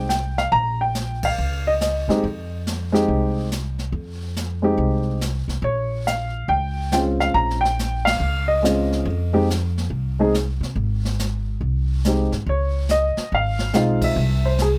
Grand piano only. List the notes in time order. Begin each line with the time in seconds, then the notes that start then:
0.09 G5
0.38 F5
0.52 A#5
0.81 G5
1.25 F5
1.67 D#5
1.82 D#5
2.09 G#3 C4 D#4 G4
2.92 G#3 C4 D#4 G4
4.62 G#3 C4 D#4 G4
5.64 C#5
6.07 F5
6.49 G5
6.92 G#3 C4 C#4 F4 G5
7.20 F5
7.34 A#5
7.61 G5
8.05 F5
8.48 D#5
8.62 G#3 C4 C#4 F4 D#5
9.33 G#3 C4 D#4 G4
10.19 G#3 C4 D#4 G#4
12.05 G#3 C4 D#4 G4
12.49 C#5
12.91 D#5
13.35 F5
13.73 G#3 C4 D#4 F4 F5
14.04 E5
14.45 C5
14.62 G#4